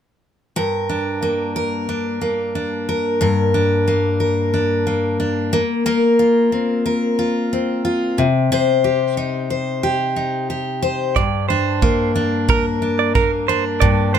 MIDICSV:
0, 0, Header, 1, 4, 480
1, 0, Start_track
1, 0, Key_signature, -2, "minor"
1, 0, Tempo, 662252
1, 407, Time_signature, 4, 2, 24, 8
1, 10283, End_track
2, 0, Start_track
2, 0, Title_t, "Clean electric guitar"
2, 0, Program_c, 0, 27
2, 8089, Note_on_c, 0, 74, 73
2, 8317, Note_off_c, 0, 74, 0
2, 8324, Note_on_c, 0, 72, 63
2, 8778, Note_off_c, 0, 72, 0
2, 9058, Note_on_c, 0, 70, 65
2, 9168, Note_off_c, 0, 70, 0
2, 9416, Note_on_c, 0, 74, 61
2, 9527, Note_off_c, 0, 74, 0
2, 9533, Note_on_c, 0, 70, 71
2, 9646, Note_off_c, 0, 70, 0
2, 9773, Note_on_c, 0, 72, 67
2, 9886, Note_off_c, 0, 72, 0
2, 10005, Note_on_c, 0, 74, 70
2, 10237, Note_off_c, 0, 74, 0
2, 10250, Note_on_c, 0, 72, 56
2, 10283, Note_off_c, 0, 72, 0
2, 10283, End_track
3, 0, Start_track
3, 0, Title_t, "Steel-string acoustic guitar"
3, 0, Program_c, 1, 25
3, 407, Note_on_c, 1, 43, 71
3, 411, Note_on_c, 1, 70, 52
3, 648, Note_on_c, 1, 62, 46
3, 888, Note_on_c, 1, 58, 47
3, 1127, Note_off_c, 1, 70, 0
3, 1130, Note_on_c, 1, 70, 52
3, 1359, Note_off_c, 1, 62, 0
3, 1368, Note_on_c, 1, 62, 52
3, 1602, Note_off_c, 1, 58, 0
3, 1605, Note_on_c, 1, 58, 42
3, 1842, Note_off_c, 1, 62, 0
3, 1850, Note_on_c, 1, 62, 44
3, 2089, Note_off_c, 1, 70, 0
3, 2092, Note_on_c, 1, 70, 54
3, 2316, Note_off_c, 1, 43, 0
3, 2325, Note_on_c, 1, 43, 66
3, 2327, Note_off_c, 1, 70, 0
3, 2330, Note_on_c, 1, 70, 62
3, 2558, Note_off_c, 1, 62, 0
3, 2567, Note_on_c, 1, 62, 49
3, 2806, Note_off_c, 1, 58, 0
3, 2809, Note_on_c, 1, 58, 50
3, 3041, Note_off_c, 1, 70, 0
3, 3044, Note_on_c, 1, 70, 49
3, 3279, Note_off_c, 1, 62, 0
3, 3288, Note_on_c, 1, 62, 49
3, 3524, Note_off_c, 1, 58, 0
3, 3527, Note_on_c, 1, 58, 41
3, 3758, Note_off_c, 1, 62, 0
3, 3767, Note_on_c, 1, 62, 45
3, 4007, Note_off_c, 1, 58, 0
3, 4007, Note_on_c, 1, 58, 73
3, 4055, Note_off_c, 1, 43, 0
3, 4056, Note_off_c, 1, 62, 0
3, 4238, Note_off_c, 1, 58, 0
3, 4246, Note_off_c, 1, 70, 0
3, 4246, Note_on_c, 1, 58, 65
3, 4249, Note_on_c, 1, 70, 49
3, 4488, Note_on_c, 1, 65, 52
3, 4728, Note_on_c, 1, 60, 46
3, 4961, Note_off_c, 1, 70, 0
3, 4969, Note_on_c, 1, 70, 58
3, 5201, Note_off_c, 1, 65, 0
3, 5209, Note_on_c, 1, 65, 57
3, 5453, Note_off_c, 1, 60, 0
3, 5456, Note_on_c, 1, 60, 45
3, 5679, Note_off_c, 1, 65, 0
3, 5687, Note_on_c, 1, 65, 49
3, 5930, Note_on_c, 1, 48, 72
3, 5976, Note_off_c, 1, 58, 0
3, 5976, Note_off_c, 1, 65, 0
3, 5977, Note_off_c, 1, 70, 0
3, 6165, Note_off_c, 1, 48, 0
3, 6174, Note_on_c, 1, 48, 71
3, 6179, Note_on_c, 1, 72, 62
3, 6409, Note_on_c, 1, 67, 56
3, 6645, Note_off_c, 1, 60, 0
3, 6648, Note_on_c, 1, 63, 50
3, 6879, Note_off_c, 1, 72, 0
3, 6888, Note_on_c, 1, 72, 55
3, 7124, Note_off_c, 1, 67, 0
3, 7127, Note_on_c, 1, 67, 60
3, 7358, Note_off_c, 1, 63, 0
3, 7367, Note_on_c, 1, 63, 46
3, 7606, Note_off_c, 1, 67, 0
3, 7609, Note_on_c, 1, 67, 48
3, 7837, Note_off_c, 1, 72, 0
3, 7846, Note_on_c, 1, 72, 55
3, 8091, Note_on_c, 1, 43, 70
3, 8092, Note_off_c, 1, 48, 0
3, 8136, Note_off_c, 1, 63, 0
3, 8136, Note_off_c, 1, 72, 0
3, 8332, Note_off_c, 1, 67, 0
3, 8335, Note_on_c, 1, 62, 56
3, 8568, Note_on_c, 1, 58, 49
3, 8801, Note_off_c, 1, 62, 0
3, 8810, Note_on_c, 1, 62, 51
3, 9049, Note_on_c, 1, 70, 62
3, 9283, Note_off_c, 1, 62, 0
3, 9291, Note_on_c, 1, 62, 50
3, 9529, Note_off_c, 1, 58, 0
3, 9532, Note_on_c, 1, 58, 52
3, 9770, Note_off_c, 1, 62, 0
3, 9778, Note_on_c, 1, 62, 58
3, 10004, Note_off_c, 1, 43, 0
3, 10013, Note_on_c, 1, 43, 80
3, 10244, Note_off_c, 1, 62, 0
3, 10253, Note_on_c, 1, 62, 60
3, 10283, Note_off_c, 1, 43, 0
3, 10283, Note_off_c, 1, 58, 0
3, 10283, Note_off_c, 1, 62, 0
3, 10283, Note_off_c, 1, 70, 0
3, 10283, End_track
4, 0, Start_track
4, 0, Title_t, "Drums"
4, 8088, Note_on_c, 9, 36, 89
4, 8161, Note_off_c, 9, 36, 0
4, 8570, Note_on_c, 9, 36, 100
4, 8643, Note_off_c, 9, 36, 0
4, 9051, Note_on_c, 9, 36, 102
4, 9124, Note_off_c, 9, 36, 0
4, 9533, Note_on_c, 9, 36, 98
4, 9606, Note_off_c, 9, 36, 0
4, 10015, Note_on_c, 9, 36, 98
4, 10088, Note_off_c, 9, 36, 0
4, 10283, End_track
0, 0, End_of_file